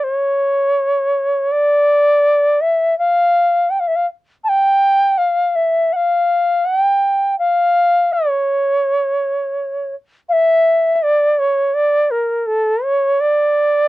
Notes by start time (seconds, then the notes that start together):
0.03 C#5
1.52 D5
2.61 E5
2.99 F5
3.70 G5
3.80 F5
3.88 E5
3.96 F5
4.44 A5
4.49 G5
5.18 F5
5.56 E5
5.93 F5 F#5
6.65 F#5
6.79 G5
7.39 F5
8.13 C#5
10.29 E5 F5
10.96 E5
11.03 D5
11.39 C#5
11.74 D5
12.11 A#4
12.47 A4
12.84 C#5
13.20 D5